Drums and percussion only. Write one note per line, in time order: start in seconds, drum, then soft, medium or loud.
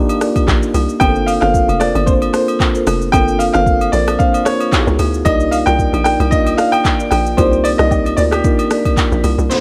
0.09 high agogo medium
0.09 shaker medium
0.21 cross-stick loud
0.21 open hi-hat medium
0.21 shaker loud
0.36 kick medium
0.36 high agogo medium
0.36 shaker soft
0.48 kick loud
0.48 clap loud
0.48 low woodblock medium
0.48 shaker medium
0.63 shaker medium
0.74 open hi-hat medium
0.74 high agogo medium
0.74 shaker medium
0.89 shaker medium
1.01 kick loud
1.01 high agogo medium
1.01 shaker medium
1.16 shaker soft
1.28 open hi-hat medium
1.28 high agogo medium
1.28 shaker loud
1.42 cross-stick loud
1.42 shaker medium
1.54 kick medium
1.54 shaker medium
1.69 high agogo medium
1.69 shaker medium
1.81 cross-stick medium
1.81 open hi-hat medium
1.81 shaker medium
1.95 high agogo medium
1.95 shaker medium
2.07 kick loud
2.07 shaker medium
2.22 high agogo medium
2.22 shaker medium
2.34 cross-stick loud
2.34 open hi-hat medium
2.34 shaker medium
2.48 high agogo medium
2.48 shaker soft
2.60 kick loud
2.60 clap loud
2.60 low woodblock medium
2.60 shaker medium
2.75 shaker medium
2.87 cross-stick loud
2.87 open hi-hat medium
2.87 high agogo medium
2.87 shaker medium
3.02 shaker medium
3.13 kick loud
3.13 high agogo medium
3.13 shaker medium
3.28 shaker medium
3.40 open hi-hat medium
3.40 high agogo medium
3.40 shaker loud
3.54 cross-stick medium
3.54 shaker soft
3.66 kick medium
3.66 shaker medium
3.81 high agogo medium
3.81 shaker medium
3.93 open hi-hat medium
3.93 shaker medium
4.08 cross-stick medium
4.08 high agogo medium
4.08 shaker medium
4.20 kick loud
4.20 shaker medium
4.34 high agogo medium
4.34 shaker medium
4.46 cross-stick loud
4.46 open hi-hat medium
4.46 shaker loud
4.61 high agogo medium
4.61 shaker medium
4.73 kick loud
4.73 clap loud
4.73 low woodblock medium
4.73 shaker medium
4.87 shaker medium
4.99 open hi-hat medium
4.99 high agogo medium
4.99 shaker medium
5.14 shaker medium
5.26 kick loud
5.26 high agogo medium
5.26 shaker medium
5.40 shaker medium
5.52 open hi-hat medium
5.52 high agogo medium
5.52 shaker loud
5.67 cross-stick medium
5.67 shaker medium
5.79 kick medium
5.79 shaker medium
5.94 high agogo medium
5.94 shaker medium
6.05 cross-stick medium
6.05 open hi-hat medium
6.05 shaker medium
6.20 high agogo medium
6.20 shaker medium
6.32 kick loud
6.32 shaker medium
6.47 high agogo medium
6.47 shaker medium
6.58 cross-stick loud
6.58 open hi-hat medium
6.58 shaker loud
6.73 high agogo medium
6.73 shaker soft
6.85 kick loud
6.85 clap loud
6.85 low woodblock medium
6.85 shaker medium
7.00 shaker medium
7.11 cross-stick medium
7.11 open hi-hat medium
7.11 high agogo medium
7.11 shaker medium
7.26 shaker medium
7.38 kick loud
7.38 high agogo medium
7.38 shaker medium
7.53 shaker soft
7.65 open hi-hat medium
7.65 high agogo medium
7.65 shaker loud
7.79 cross-stick loud
7.79 shaker medium
7.91 kick medium
7.91 low woodblock medium
7.91 shaker medium
8.06 high agogo medium
8.06 shaker medium
8.17 open hi-hat medium
8.17 shaker medium
8.32 cross-stick loud
8.32 high agogo medium
8.32 shaker medium
8.44 kick loud
8.44 shaker medium
8.59 high agogo medium
8.59 shaker medium
8.71 cross-stick loud
8.71 open hi-hat medium
8.71 shaker loud
8.85 kick medium
8.85 high agogo medium
8.85 shaker soft
8.97 kick loud
8.97 clap loud
8.97 low woodblock medium
8.97 shaker medium
9.12 shaker medium
9.24 open hi-hat medium
9.24 high agogo medium
9.24 shaker loud
9.39 shaker medium
9.51 shaker medium